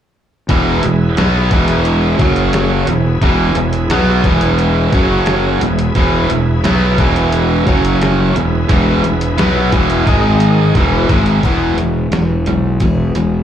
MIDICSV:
0, 0, Header, 1, 7, 480
1, 0, Start_track
1, 0, Key_signature, 4, "major"
1, 0, Tempo, 684932
1, 341, Time_signature, 4, 2, 24, 8
1, 9412, End_track
2, 0, Start_track
2, 0, Title_t, "Tonewheel organ"
2, 0, Program_c, 0, 16
2, 341, Note_on_c, 0, 71, 64
2, 344, Note_on_c, 0, 68, 66
2, 350, Note_on_c, 0, 64, 72
2, 1526, Note_off_c, 0, 71, 0
2, 1528, Note_off_c, 0, 68, 0
2, 1531, Note_off_c, 0, 64, 0
2, 1544, Note_on_c, 0, 61, 76
2, 1549, Note_on_c, 0, 73, 65
2, 1552, Note_on_c, 0, 66, 71
2, 2015, Note_off_c, 0, 61, 0
2, 2016, Note_on_c, 0, 68, 66
2, 2018, Note_off_c, 0, 73, 0
2, 2019, Note_off_c, 0, 66, 0
2, 2019, Note_on_c, 0, 71, 64
2, 2021, Note_on_c, 0, 64, 65
2, 3441, Note_off_c, 0, 68, 0
2, 3442, Note_off_c, 0, 71, 0
2, 3443, Note_off_c, 0, 64, 0
2, 3458, Note_on_c, 0, 61, 70
2, 3458, Note_on_c, 0, 66, 71
2, 3463, Note_on_c, 0, 73, 70
2, 3932, Note_off_c, 0, 61, 0
2, 3932, Note_off_c, 0, 66, 0
2, 3932, Note_on_c, 0, 71, 62
2, 3934, Note_off_c, 0, 73, 0
2, 3938, Note_on_c, 0, 68, 62
2, 3941, Note_on_c, 0, 64, 66
2, 5359, Note_off_c, 0, 71, 0
2, 5362, Note_off_c, 0, 68, 0
2, 5363, Note_off_c, 0, 64, 0
2, 5376, Note_on_c, 0, 73, 67
2, 5377, Note_on_c, 0, 66, 65
2, 5381, Note_on_c, 0, 61, 69
2, 5851, Note_off_c, 0, 66, 0
2, 5851, Note_off_c, 0, 73, 0
2, 5853, Note_off_c, 0, 61, 0
2, 5853, Note_on_c, 0, 64, 67
2, 5854, Note_on_c, 0, 71, 67
2, 5858, Note_on_c, 0, 68, 65
2, 7043, Note_off_c, 0, 64, 0
2, 7043, Note_off_c, 0, 71, 0
2, 7045, Note_off_c, 0, 68, 0
2, 7057, Note_on_c, 0, 63, 73
2, 7059, Note_on_c, 0, 68, 69
2, 7062, Note_on_c, 0, 75, 71
2, 7532, Note_off_c, 0, 63, 0
2, 7533, Note_off_c, 0, 68, 0
2, 7534, Note_off_c, 0, 75, 0
2, 7537, Note_on_c, 0, 71, 69
2, 7541, Note_on_c, 0, 76, 73
2, 7544, Note_on_c, 0, 68, 65
2, 8012, Note_off_c, 0, 71, 0
2, 8014, Note_off_c, 0, 76, 0
2, 8016, Note_off_c, 0, 68, 0
2, 9412, End_track
3, 0, Start_track
3, 0, Title_t, "Steel-string acoustic guitar"
3, 0, Program_c, 1, 25
3, 8019, Note_on_c, 1, 40, 80
3, 8021, Note_on_c, 1, 47, 80
3, 8023, Note_on_c, 1, 52, 82
3, 8024, Note_on_c, 1, 59, 81
3, 8026, Note_on_c, 1, 68, 85
3, 8027, Note_on_c, 1, 64, 82
3, 8246, Note_off_c, 1, 68, 0
3, 8247, Note_off_c, 1, 64, 0
3, 8252, Note_off_c, 1, 59, 0
3, 8254, Note_off_c, 1, 52, 0
3, 8254, Note_on_c, 1, 68, 53
3, 8256, Note_on_c, 1, 64, 52
3, 8258, Note_off_c, 1, 40, 0
3, 8259, Note_off_c, 1, 47, 0
3, 8260, Note_on_c, 1, 59, 49
3, 8263, Note_on_c, 1, 52, 48
3, 8481, Note_off_c, 1, 52, 0
3, 8490, Note_off_c, 1, 59, 0
3, 8490, Note_on_c, 1, 52, 58
3, 8494, Note_off_c, 1, 64, 0
3, 8496, Note_off_c, 1, 68, 0
3, 8498, Note_on_c, 1, 59, 65
3, 8503, Note_on_c, 1, 64, 67
3, 8506, Note_on_c, 1, 68, 76
3, 8724, Note_off_c, 1, 68, 0
3, 8726, Note_off_c, 1, 64, 0
3, 8733, Note_on_c, 1, 68, 53
3, 8734, Note_off_c, 1, 52, 0
3, 8735, Note_on_c, 1, 64, 50
3, 8738, Note_off_c, 1, 59, 0
3, 8743, Note_on_c, 1, 52, 47
3, 8745, Note_on_c, 1, 59, 46
3, 8963, Note_off_c, 1, 52, 0
3, 8968, Note_off_c, 1, 59, 0
3, 8968, Note_off_c, 1, 64, 0
3, 8968, Note_on_c, 1, 40, 77
3, 8970, Note_on_c, 1, 47, 77
3, 8971, Note_off_c, 1, 68, 0
3, 8971, Note_on_c, 1, 52, 74
3, 8976, Note_on_c, 1, 59, 84
3, 8976, Note_on_c, 1, 64, 74
3, 8979, Note_on_c, 1, 68, 91
3, 9211, Note_off_c, 1, 68, 0
3, 9213, Note_off_c, 1, 40, 0
3, 9213, Note_off_c, 1, 64, 0
3, 9214, Note_off_c, 1, 47, 0
3, 9215, Note_off_c, 1, 52, 0
3, 9217, Note_off_c, 1, 59, 0
3, 9220, Note_on_c, 1, 68, 56
3, 9222, Note_on_c, 1, 64, 50
3, 9226, Note_on_c, 1, 59, 51
3, 9231, Note_on_c, 1, 52, 44
3, 9412, Note_off_c, 1, 52, 0
3, 9412, Note_off_c, 1, 59, 0
3, 9412, Note_off_c, 1, 64, 0
3, 9412, Note_off_c, 1, 68, 0
3, 9412, End_track
4, 0, Start_track
4, 0, Title_t, "Overdriven electric guitar"
4, 0, Program_c, 2, 29
4, 341, Note_on_c, 2, 40, 85
4, 344, Note_on_c, 2, 47, 90
4, 348, Note_on_c, 2, 52, 103
4, 573, Note_off_c, 2, 40, 0
4, 575, Note_off_c, 2, 47, 0
4, 577, Note_off_c, 2, 52, 0
4, 586, Note_on_c, 2, 40, 62
4, 587, Note_on_c, 2, 47, 71
4, 775, Note_off_c, 2, 40, 0
4, 775, Note_off_c, 2, 47, 0
4, 822, Note_on_c, 2, 47, 98
4, 825, Note_on_c, 2, 54, 98
4, 829, Note_on_c, 2, 59, 101
4, 1053, Note_off_c, 2, 47, 0
4, 1055, Note_off_c, 2, 54, 0
4, 1057, Note_off_c, 2, 59, 0
4, 1058, Note_on_c, 2, 40, 91
4, 1065, Note_on_c, 2, 47, 99
4, 1068, Note_on_c, 2, 52, 105
4, 1525, Note_off_c, 2, 40, 0
4, 1528, Note_on_c, 2, 42, 83
4, 1532, Note_off_c, 2, 47, 0
4, 1535, Note_off_c, 2, 52, 0
4, 1535, Note_on_c, 2, 49, 91
4, 1539, Note_on_c, 2, 54, 97
4, 2005, Note_off_c, 2, 42, 0
4, 2008, Note_off_c, 2, 49, 0
4, 2011, Note_off_c, 2, 54, 0
4, 2015, Note_on_c, 2, 40, 57
4, 2017, Note_on_c, 2, 47, 61
4, 2208, Note_off_c, 2, 40, 0
4, 2209, Note_off_c, 2, 47, 0
4, 2256, Note_on_c, 2, 40, 88
4, 2260, Note_on_c, 2, 47, 96
4, 2263, Note_on_c, 2, 52, 98
4, 2489, Note_off_c, 2, 40, 0
4, 2491, Note_off_c, 2, 47, 0
4, 2493, Note_off_c, 2, 52, 0
4, 2497, Note_on_c, 2, 40, 60
4, 2501, Note_on_c, 2, 47, 67
4, 2689, Note_off_c, 2, 40, 0
4, 2690, Note_off_c, 2, 47, 0
4, 2739, Note_on_c, 2, 47, 93
4, 2742, Note_on_c, 2, 54, 96
4, 2743, Note_on_c, 2, 59, 120
4, 2970, Note_off_c, 2, 47, 0
4, 2972, Note_off_c, 2, 54, 0
4, 2972, Note_off_c, 2, 59, 0
4, 2976, Note_on_c, 2, 40, 84
4, 2982, Note_on_c, 2, 47, 88
4, 2982, Note_on_c, 2, 52, 99
4, 3448, Note_off_c, 2, 40, 0
4, 3451, Note_off_c, 2, 47, 0
4, 3452, Note_off_c, 2, 52, 0
4, 3456, Note_on_c, 2, 42, 86
4, 3461, Note_on_c, 2, 49, 88
4, 3465, Note_on_c, 2, 54, 91
4, 3928, Note_off_c, 2, 42, 0
4, 3931, Note_off_c, 2, 49, 0
4, 3933, Note_off_c, 2, 54, 0
4, 3940, Note_on_c, 2, 40, 65
4, 3946, Note_on_c, 2, 47, 75
4, 4130, Note_off_c, 2, 40, 0
4, 4133, Note_off_c, 2, 47, 0
4, 4186, Note_on_c, 2, 40, 95
4, 4190, Note_on_c, 2, 47, 97
4, 4191, Note_on_c, 2, 52, 111
4, 4413, Note_off_c, 2, 40, 0
4, 4416, Note_off_c, 2, 47, 0
4, 4416, Note_off_c, 2, 52, 0
4, 4423, Note_on_c, 2, 40, 62
4, 4424, Note_on_c, 2, 47, 68
4, 4611, Note_off_c, 2, 40, 0
4, 4611, Note_off_c, 2, 47, 0
4, 4658, Note_on_c, 2, 47, 104
4, 4663, Note_on_c, 2, 54, 96
4, 4666, Note_on_c, 2, 59, 112
4, 4889, Note_off_c, 2, 47, 0
4, 4892, Note_off_c, 2, 54, 0
4, 4893, Note_off_c, 2, 59, 0
4, 4901, Note_on_c, 2, 40, 100
4, 4904, Note_on_c, 2, 47, 93
4, 4906, Note_on_c, 2, 52, 101
4, 5371, Note_off_c, 2, 40, 0
4, 5373, Note_off_c, 2, 47, 0
4, 5373, Note_off_c, 2, 52, 0
4, 5380, Note_on_c, 2, 42, 78
4, 5385, Note_on_c, 2, 49, 86
4, 5385, Note_on_c, 2, 54, 92
4, 5851, Note_off_c, 2, 42, 0
4, 5853, Note_off_c, 2, 49, 0
4, 5853, Note_off_c, 2, 54, 0
4, 5859, Note_on_c, 2, 40, 58
4, 5860, Note_on_c, 2, 47, 65
4, 6049, Note_off_c, 2, 40, 0
4, 6050, Note_off_c, 2, 47, 0
4, 6090, Note_on_c, 2, 40, 82
4, 6096, Note_on_c, 2, 47, 96
4, 6098, Note_on_c, 2, 52, 95
4, 6323, Note_off_c, 2, 47, 0
4, 6324, Note_off_c, 2, 40, 0
4, 6329, Note_off_c, 2, 52, 0
4, 6331, Note_on_c, 2, 47, 64
4, 6332, Note_on_c, 2, 40, 65
4, 6525, Note_off_c, 2, 47, 0
4, 6526, Note_off_c, 2, 40, 0
4, 6576, Note_on_c, 2, 47, 100
4, 6579, Note_on_c, 2, 54, 99
4, 6583, Note_on_c, 2, 59, 104
4, 6808, Note_off_c, 2, 47, 0
4, 6810, Note_off_c, 2, 54, 0
4, 6812, Note_off_c, 2, 59, 0
4, 6816, Note_on_c, 2, 40, 81
4, 6819, Note_on_c, 2, 47, 94
4, 6822, Note_on_c, 2, 52, 96
4, 7049, Note_off_c, 2, 40, 0
4, 7050, Note_off_c, 2, 47, 0
4, 7052, Note_off_c, 2, 52, 0
4, 7063, Note_on_c, 2, 44, 86
4, 7064, Note_on_c, 2, 51, 97
4, 7069, Note_on_c, 2, 56, 92
4, 7532, Note_off_c, 2, 44, 0
4, 7533, Note_off_c, 2, 51, 0
4, 7535, Note_off_c, 2, 56, 0
4, 7538, Note_on_c, 2, 40, 93
4, 7541, Note_on_c, 2, 47, 90
4, 7546, Note_on_c, 2, 52, 100
4, 7770, Note_off_c, 2, 40, 0
4, 7772, Note_off_c, 2, 47, 0
4, 7774, Note_off_c, 2, 52, 0
4, 7781, Note_on_c, 2, 44, 92
4, 7784, Note_on_c, 2, 51, 80
4, 7788, Note_on_c, 2, 56, 90
4, 8011, Note_off_c, 2, 56, 0
4, 8012, Note_off_c, 2, 44, 0
4, 8013, Note_off_c, 2, 51, 0
4, 8016, Note_on_c, 2, 52, 81
4, 8019, Note_on_c, 2, 56, 76
4, 8021, Note_on_c, 2, 59, 88
4, 8242, Note_off_c, 2, 52, 0
4, 8244, Note_off_c, 2, 56, 0
4, 8245, Note_off_c, 2, 59, 0
4, 8261, Note_on_c, 2, 52, 66
4, 8266, Note_on_c, 2, 56, 72
4, 8475, Note_off_c, 2, 52, 0
4, 8477, Note_off_c, 2, 56, 0
4, 8495, Note_on_c, 2, 52, 77
4, 8499, Note_on_c, 2, 56, 70
4, 8712, Note_off_c, 2, 52, 0
4, 8714, Note_off_c, 2, 56, 0
4, 8742, Note_on_c, 2, 52, 67
4, 8745, Note_on_c, 2, 56, 72
4, 8956, Note_off_c, 2, 52, 0
4, 8958, Note_off_c, 2, 56, 0
4, 8986, Note_on_c, 2, 56, 69
4, 8987, Note_on_c, 2, 52, 60
4, 9198, Note_off_c, 2, 52, 0
4, 9198, Note_off_c, 2, 56, 0
4, 9223, Note_on_c, 2, 52, 59
4, 9226, Note_on_c, 2, 56, 60
4, 9412, Note_off_c, 2, 52, 0
4, 9412, Note_off_c, 2, 56, 0
4, 9412, End_track
5, 0, Start_track
5, 0, Title_t, "Distorted electric guitar"
5, 0, Program_c, 3, 30
5, 8013, Note_on_c, 3, 40, 84
5, 8016, Note_on_c, 3, 47, 86
5, 8241, Note_off_c, 3, 40, 0
5, 8242, Note_off_c, 3, 47, 0
5, 8252, Note_on_c, 3, 40, 56
5, 8255, Note_on_c, 3, 47, 66
5, 8471, Note_off_c, 3, 40, 0
5, 8472, Note_off_c, 3, 47, 0
5, 8494, Note_on_c, 3, 40, 71
5, 8497, Note_on_c, 3, 47, 82
5, 8712, Note_off_c, 3, 40, 0
5, 8714, Note_off_c, 3, 47, 0
5, 8740, Note_on_c, 3, 40, 59
5, 8741, Note_on_c, 3, 47, 70
5, 8955, Note_off_c, 3, 40, 0
5, 8956, Note_off_c, 3, 47, 0
5, 8981, Note_on_c, 3, 40, 65
5, 8982, Note_on_c, 3, 47, 66
5, 9196, Note_off_c, 3, 40, 0
5, 9196, Note_off_c, 3, 47, 0
5, 9218, Note_on_c, 3, 40, 66
5, 9219, Note_on_c, 3, 47, 73
5, 9412, Note_off_c, 3, 40, 0
5, 9412, Note_off_c, 3, 47, 0
5, 9412, End_track
6, 0, Start_track
6, 0, Title_t, "Fingered electric bass"
6, 0, Program_c, 4, 33
6, 345, Note_on_c, 4, 28, 97
6, 566, Note_off_c, 4, 28, 0
6, 588, Note_on_c, 4, 28, 77
6, 807, Note_off_c, 4, 28, 0
6, 830, Note_on_c, 4, 35, 92
6, 1048, Note_off_c, 4, 35, 0
6, 1060, Note_on_c, 4, 28, 89
6, 1511, Note_off_c, 4, 28, 0
6, 1535, Note_on_c, 4, 30, 101
6, 1988, Note_off_c, 4, 30, 0
6, 2020, Note_on_c, 4, 28, 75
6, 2241, Note_off_c, 4, 28, 0
6, 2254, Note_on_c, 4, 28, 101
6, 2478, Note_off_c, 4, 28, 0
6, 2491, Note_on_c, 4, 28, 80
6, 2716, Note_off_c, 4, 28, 0
6, 2732, Note_on_c, 4, 35, 99
6, 2957, Note_off_c, 4, 35, 0
6, 2973, Note_on_c, 4, 28, 91
6, 3426, Note_off_c, 4, 28, 0
6, 3452, Note_on_c, 4, 30, 91
6, 3905, Note_off_c, 4, 30, 0
6, 3930, Note_on_c, 4, 28, 75
6, 4156, Note_off_c, 4, 28, 0
6, 4171, Note_on_c, 4, 28, 103
6, 4396, Note_off_c, 4, 28, 0
6, 4415, Note_on_c, 4, 28, 82
6, 4638, Note_off_c, 4, 28, 0
6, 4660, Note_on_c, 4, 35, 99
6, 4881, Note_off_c, 4, 35, 0
6, 4891, Note_on_c, 4, 28, 91
6, 5345, Note_off_c, 4, 28, 0
6, 5373, Note_on_c, 4, 30, 95
6, 5826, Note_off_c, 4, 30, 0
6, 5857, Note_on_c, 4, 28, 76
6, 6080, Note_off_c, 4, 28, 0
6, 6095, Note_on_c, 4, 28, 94
6, 6318, Note_off_c, 4, 28, 0
6, 6345, Note_on_c, 4, 28, 84
6, 6564, Note_off_c, 4, 28, 0
6, 6579, Note_on_c, 4, 35, 94
6, 6801, Note_off_c, 4, 35, 0
6, 6815, Note_on_c, 4, 28, 83
6, 7039, Note_off_c, 4, 28, 0
6, 7059, Note_on_c, 4, 32, 90
6, 7510, Note_off_c, 4, 32, 0
6, 7538, Note_on_c, 4, 28, 95
6, 7761, Note_off_c, 4, 28, 0
6, 7773, Note_on_c, 4, 32, 88
6, 7998, Note_off_c, 4, 32, 0
6, 8012, Note_on_c, 4, 28, 89
6, 8245, Note_off_c, 4, 28, 0
6, 8251, Note_on_c, 4, 28, 79
6, 8485, Note_off_c, 4, 28, 0
6, 8487, Note_on_c, 4, 28, 83
6, 8723, Note_off_c, 4, 28, 0
6, 8734, Note_on_c, 4, 35, 79
6, 8966, Note_off_c, 4, 35, 0
6, 8979, Note_on_c, 4, 28, 80
6, 9209, Note_off_c, 4, 28, 0
6, 9219, Note_on_c, 4, 28, 83
6, 9412, Note_off_c, 4, 28, 0
6, 9412, End_track
7, 0, Start_track
7, 0, Title_t, "Drums"
7, 343, Note_on_c, 9, 42, 68
7, 344, Note_on_c, 9, 36, 99
7, 413, Note_off_c, 9, 42, 0
7, 414, Note_off_c, 9, 36, 0
7, 581, Note_on_c, 9, 42, 75
7, 651, Note_off_c, 9, 42, 0
7, 821, Note_on_c, 9, 42, 75
7, 829, Note_on_c, 9, 38, 98
7, 891, Note_off_c, 9, 42, 0
7, 899, Note_off_c, 9, 38, 0
7, 1058, Note_on_c, 9, 42, 71
7, 1060, Note_on_c, 9, 36, 96
7, 1128, Note_off_c, 9, 42, 0
7, 1130, Note_off_c, 9, 36, 0
7, 1176, Note_on_c, 9, 42, 77
7, 1246, Note_off_c, 9, 42, 0
7, 1297, Note_on_c, 9, 42, 75
7, 1367, Note_off_c, 9, 42, 0
7, 1537, Note_on_c, 9, 36, 104
7, 1538, Note_on_c, 9, 42, 74
7, 1607, Note_off_c, 9, 36, 0
7, 1608, Note_off_c, 9, 42, 0
7, 1655, Note_on_c, 9, 42, 76
7, 1725, Note_off_c, 9, 42, 0
7, 1774, Note_on_c, 9, 42, 80
7, 1781, Note_on_c, 9, 38, 106
7, 1844, Note_off_c, 9, 42, 0
7, 1851, Note_off_c, 9, 38, 0
7, 2013, Note_on_c, 9, 42, 79
7, 2083, Note_off_c, 9, 42, 0
7, 2253, Note_on_c, 9, 36, 105
7, 2254, Note_on_c, 9, 42, 74
7, 2323, Note_off_c, 9, 36, 0
7, 2324, Note_off_c, 9, 42, 0
7, 2490, Note_on_c, 9, 42, 70
7, 2560, Note_off_c, 9, 42, 0
7, 2612, Note_on_c, 9, 42, 68
7, 2682, Note_off_c, 9, 42, 0
7, 2733, Note_on_c, 9, 42, 72
7, 2740, Note_on_c, 9, 38, 103
7, 2803, Note_off_c, 9, 42, 0
7, 2810, Note_off_c, 9, 38, 0
7, 2971, Note_on_c, 9, 36, 93
7, 2973, Note_on_c, 9, 42, 67
7, 2980, Note_on_c, 9, 38, 33
7, 3041, Note_off_c, 9, 36, 0
7, 3043, Note_off_c, 9, 42, 0
7, 3050, Note_off_c, 9, 38, 0
7, 3091, Note_on_c, 9, 42, 72
7, 3161, Note_off_c, 9, 42, 0
7, 3214, Note_on_c, 9, 42, 66
7, 3284, Note_off_c, 9, 42, 0
7, 3451, Note_on_c, 9, 36, 106
7, 3452, Note_on_c, 9, 42, 72
7, 3521, Note_off_c, 9, 36, 0
7, 3522, Note_off_c, 9, 42, 0
7, 3686, Note_on_c, 9, 42, 70
7, 3694, Note_on_c, 9, 38, 115
7, 3756, Note_off_c, 9, 42, 0
7, 3764, Note_off_c, 9, 38, 0
7, 3934, Note_on_c, 9, 42, 74
7, 4004, Note_off_c, 9, 42, 0
7, 4055, Note_on_c, 9, 42, 70
7, 4125, Note_off_c, 9, 42, 0
7, 4171, Note_on_c, 9, 36, 97
7, 4171, Note_on_c, 9, 42, 74
7, 4241, Note_off_c, 9, 36, 0
7, 4241, Note_off_c, 9, 42, 0
7, 4414, Note_on_c, 9, 42, 70
7, 4484, Note_off_c, 9, 42, 0
7, 4655, Note_on_c, 9, 42, 72
7, 4662, Note_on_c, 9, 38, 106
7, 4725, Note_off_c, 9, 42, 0
7, 4732, Note_off_c, 9, 38, 0
7, 4893, Note_on_c, 9, 36, 96
7, 4893, Note_on_c, 9, 42, 71
7, 4963, Note_off_c, 9, 36, 0
7, 4963, Note_off_c, 9, 42, 0
7, 5019, Note_on_c, 9, 42, 76
7, 5089, Note_off_c, 9, 42, 0
7, 5133, Note_on_c, 9, 42, 74
7, 5203, Note_off_c, 9, 42, 0
7, 5373, Note_on_c, 9, 36, 106
7, 5373, Note_on_c, 9, 42, 73
7, 5443, Note_off_c, 9, 36, 0
7, 5443, Note_off_c, 9, 42, 0
7, 5499, Note_on_c, 9, 42, 80
7, 5569, Note_off_c, 9, 42, 0
7, 5617, Note_on_c, 9, 42, 75
7, 5625, Note_on_c, 9, 38, 111
7, 5687, Note_off_c, 9, 42, 0
7, 5695, Note_off_c, 9, 38, 0
7, 5858, Note_on_c, 9, 42, 77
7, 5929, Note_off_c, 9, 42, 0
7, 6092, Note_on_c, 9, 42, 79
7, 6093, Note_on_c, 9, 36, 99
7, 6162, Note_off_c, 9, 42, 0
7, 6163, Note_off_c, 9, 36, 0
7, 6336, Note_on_c, 9, 42, 74
7, 6406, Note_off_c, 9, 42, 0
7, 6456, Note_on_c, 9, 42, 71
7, 6526, Note_off_c, 9, 42, 0
7, 6575, Note_on_c, 9, 42, 65
7, 6583, Note_on_c, 9, 38, 108
7, 6645, Note_off_c, 9, 42, 0
7, 6653, Note_off_c, 9, 38, 0
7, 6814, Note_on_c, 9, 36, 94
7, 6814, Note_on_c, 9, 42, 73
7, 6884, Note_off_c, 9, 36, 0
7, 6884, Note_off_c, 9, 42, 0
7, 6936, Note_on_c, 9, 42, 80
7, 7006, Note_off_c, 9, 42, 0
7, 7054, Note_on_c, 9, 36, 104
7, 7057, Note_on_c, 9, 42, 69
7, 7124, Note_off_c, 9, 36, 0
7, 7128, Note_off_c, 9, 42, 0
7, 7290, Note_on_c, 9, 42, 69
7, 7360, Note_off_c, 9, 42, 0
7, 7534, Note_on_c, 9, 36, 108
7, 7534, Note_on_c, 9, 42, 72
7, 7604, Note_off_c, 9, 36, 0
7, 7605, Note_off_c, 9, 42, 0
7, 7774, Note_on_c, 9, 36, 109
7, 7775, Note_on_c, 9, 42, 73
7, 7844, Note_off_c, 9, 36, 0
7, 7845, Note_off_c, 9, 42, 0
7, 7891, Note_on_c, 9, 42, 62
7, 7961, Note_off_c, 9, 42, 0
7, 8012, Note_on_c, 9, 42, 53
7, 8014, Note_on_c, 9, 36, 101
7, 8082, Note_off_c, 9, 42, 0
7, 8084, Note_off_c, 9, 36, 0
7, 8254, Note_on_c, 9, 42, 63
7, 8324, Note_off_c, 9, 42, 0
7, 8493, Note_on_c, 9, 42, 58
7, 8501, Note_on_c, 9, 38, 92
7, 8563, Note_off_c, 9, 42, 0
7, 8571, Note_off_c, 9, 38, 0
7, 8733, Note_on_c, 9, 42, 59
7, 8803, Note_off_c, 9, 42, 0
7, 8973, Note_on_c, 9, 42, 58
7, 8974, Note_on_c, 9, 36, 99
7, 9043, Note_off_c, 9, 42, 0
7, 9044, Note_off_c, 9, 36, 0
7, 9216, Note_on_c, 9, 42, 60
7, 9286, Note_off_c, 9, 42, 0
7, 9412, End_track
0, 0, End_of_file